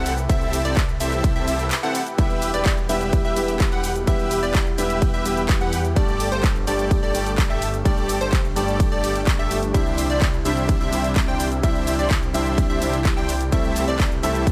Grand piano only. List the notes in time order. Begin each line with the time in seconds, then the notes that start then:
2.17 G3 B3 E4 G4
2.89 G3 B3 E4 G4
3.35 G3 B3 E4 G4
4.06 G3 B3 E4 G4
4.78 G3 B3 E4 G4
5.24 G3 B3 E4 G4
5.95 G3 A3 D4 G4
6.67 G3 A3 D4 G4
7.13 G3 A3 D4 G4
7.84 G3 A3 D4 G4
8.56 G3 A3 D4 G4
9.50 G3 A3 D4 G4
9.73 G3 C4 D4 E4
10.45 G3 C4 D4 E4
10.91 G3 C4 D4 E4
11.62 G3 C4 D4 E4
12.33 G3 C4 D4 E4
12.80 G3 C4 D4 E4
13.51 G3 A3 C4 E4
14.22 G3 A3 C4 E4